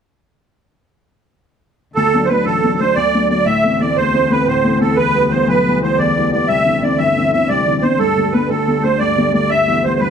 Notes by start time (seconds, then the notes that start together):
1.95 D2 A4
2.14 F#3 A3 D4
2.25 B4 C5
2.30 F#3 A3 D4
2.45 A1 A4
2.63 F#3 A3 D4
2.80 F#3 A3 D4 C5
2.95 D2 D5
3.14 F#3 A3 D4
3.30 F#3 A3 D4 D5
3.46 A2 E5
3.64 E3 A3 C4
3.80 E3 A3 C4 D5
3.96 E2 C5
4.13 E3 A3 C4
4.30 E3 A3 C4 B4
4.47 A2 C5
4.64 E3 A3 C4
4.81 E3 A3 C4 A4
4.97 E2 B4
5.15 E3 G3 B3
5.31 E3 G3 B3 C5
5.47 B1 B4
5.66 E3 G3 B3
5.82 E3 G3 B3 C5
5.98 E2 D5
6.16 E3 G3 B3
6.32 E3 G3 B3 D5
6.48 C2 E5
6.65 D3 E3 C4
6.82 D3 E3 C4 D5
6.98 G1 E5
7.17 D3 E3 C4
7.33 D3 E3 C4 E5
7.49 C2 D5
7.66 D3 E3 C4
7.82 D3 E3 C4 C5
7.99 D2 G2 A4
8.17 D3 G3 A3
8.33 D3 G3 A3 B4
8.49 D2 A4
8.68 D3 G3 A3
8.83 D3 G3 A3 C5
8.99 G2 D5
9.17 D3 G3 A3
9.33 D3 G3 A3 D5
9.50 G2 E5
9.67 E3 G3 B3
9.84 E3 G3 B3 C5
10.00 G2 B4